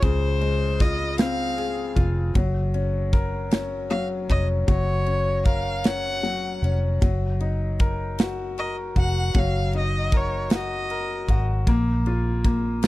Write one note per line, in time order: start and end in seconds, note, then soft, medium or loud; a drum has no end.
0.00 1.92 C#2 loud
0.00 2.31 C#3 medium
0.00 0.41 G#3 soft
0.00 0.80 F4 medium
0.00 0.76 G#4 medium
0.00 0.82 C5 medium
0.00 kick loud
0.00 ride medium
0.41 1.92 G#3 soft
0.41 ride soft
0.80 1.94 F4 medium
0.80 1.19 D#5 medium
0.80 kick loud
0.80 snare soft
0.80 ride soft
1.18 2.32 C4 medium
1.18 2.02 F5 loud
1.18 snare loud
1.18 ride medium
1.58 2.33 G#4 medium
1.58 ride soft
1.96 2.33 F1 medium
1.96 2.34 F4 medium
1.96 kick medium
1.96 ride soft
2.35 4.25 F#1 loud
2.35 3.89 F#3 medium
2.35 kick loud
2.35 ride medium
2.74 3.50 C#4 medium
2.74 ride soft
3.13 4.64 A#4 medium
3.13 kick loud
3.13 ride soft
3.51 4.27 C#4 medium
3.51 snare loud
3.51 ride medium
3.90 4.66 F#3 medium
3.90 4.08 F5 medium
3.90 ride soft
4.29 4.66 F1 medium
4.29 5.05 C#4 medium
4.29 4.48 D#5 medium
4.29 kick medium
4.29 ride soft
4.68 6.59 F#1 loud
4.68 6.22 F#3 medium
4.68 5.42 C#5 medium
4.68 kick loud
4.68 ride medium
5.06 5.84 C#4 soft
5.06 ride soft
5.45 6.98 A#4 medium
5.45 5.88 F5 medium
5.45 kick medium
5.45 ride soft
5.84 6.62 C#4 medium
5.84 6.73 F#5 loud
5.84 snare loud
5.84 ride medium
6.23 6.99 F#3 medium
6.23 ride soft
6.62 6.99 F1 medium
6.62 7.01 C#4 soft
6.62 ride soft
7.02 8.92 F#1 medium
7.02 9.31 F#3 medium
7.02 kick loud
7.02 ride medium
7.40 8.92 D#4 soft
7.40 ride soft
7.79 8.58 A#4 medium
7.79 kick loud
7.79 ride soft
8.19 8.95 F#4 medium
8.19 snare loud
8.19 ride medium
8.58 10.09 A#4 medium
8.58 8.76 D#5 medium
8.58 ride soft
8.96 9.32 F1 medium
8.96 10.47 F#4 medium
8.96 9.40 F#5 loud
8.96 kick medium
8.96 ride soft
9.34 11.24 F#1 loud
9.34 11.63 F#3 medium
9.34 kick loud
9.34 ride medium
9.39 9.75 F5 medium
9.73 11.25 D#4 medium
9.73 ride soft
9.78 10.18 D#5 medium
10.12 10.90 A#4 medium
10.12 kick medium
10.12 ride soft
10.17 10.53 C#5 medium
10.50 11.28 F#4 medium
10.50 snare loud
10.50 ride medium
10.56 11.36 D#5 medium
10.90 11.65 A#4 medium
10.90 ride soft
11.28 11.64 G#1 medium
11.28 11.66 F#4 medium
11.28 kick medium
11.28 ride soft
11.67 12.87 A#1 loud
11.67 12.43 A#3 medium
11.67 kick loud
11.67 ride medium
12.06 12.82 F4 medium
12.06 ride soft
12.44 12.87 A#3 medium
12.44 kick loud
12.44 ride soft
12.82 12.87 F4 medium
12.82 snare loud
12.82 ride medium